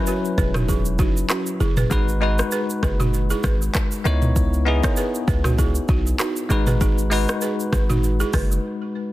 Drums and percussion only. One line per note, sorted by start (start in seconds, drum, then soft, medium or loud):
0.07 shaker medium
0.25 shaker soft
0.38 kick loud
0.38 shaker soft
0.54 cross-stick loud
0.54 mid tom medium
0.54 shaker soft
0.69 kick medium
0.69 shaker medium
0.85 shaker medium
0.99 kick loud
0.99 shaker medium
1.17 shaker medium
1.29 cross-stick medium
1.29 clap medium
1.29 shaker medium
1.46 shaker medium
1.61 shaker medium
1.77 mid tom loud
1.77 shaker medium
1.91 kick loud
1.91 shaker medium
2.08 shaker medium
2.39 cross-stick loud
2.39 shaker medium
2.51 shaker medium
2.70 shaker soft
2.83 kick loud
2.83 cross-stick loud
2.83 shaker soft
3.00 mid tom medium
3.00 shaker soft
3.14 shaker medium
3.30 shaker medium
3.44 kick loud
3.44 cross-stick loud
3.44 shaker medium
3.62 shaker medium
3.74 kick loud
3.74 cross-stick loud
3.74 clap medium
3.74 shaker medium
3.91 shaker medium
4.06 cross-stick medium
4.06 shaker medium
4.22 mid tom medium
4.22 shaker medium
4.36 kick loud
4.36 shaker medium
4.53 shaker medium
4.84 kick loud
4.84 cross-stick loud
4.84 shaker medium
4.97 shaker medium
5.15 shaker medium
5.28 kick loud
5.28 shaker soft
5.44 cross-stick medium
5.44 mid tom medium
5.44 shaker medium
5.59 kick medium
5.59 shaker medium
5.75 shaker medium
5.88 kick loud
5.88 shaker medium
6.07 shaker medium
6.19 cross-stick medium
6.19 clap medium
6.19 shaker medium
6.36 shaker medium
6.50 shaker medium
6.67 mid tom loud
6.67 shaker medium
6.81 kick loud
6.81 shaker medium
6.98 shaker medium
7.12 open hi-hat medium
7.12 shaker medium
7.28 cross-stick loud
7.28 shaker medium
7.41 shaker medium
7.60 shaker medium
7.73 kick loud
7.73 cross-stick loud
7.73 shaker soft
7.90 mid tom medium
7.90 shaker soft
8.04 shaker medium
8.20 shaker medium
8.33 kick loud
8.33 cross-stick loud
8.33 open hi-hat medium
8.33 shaker medium
8.52 shaker medium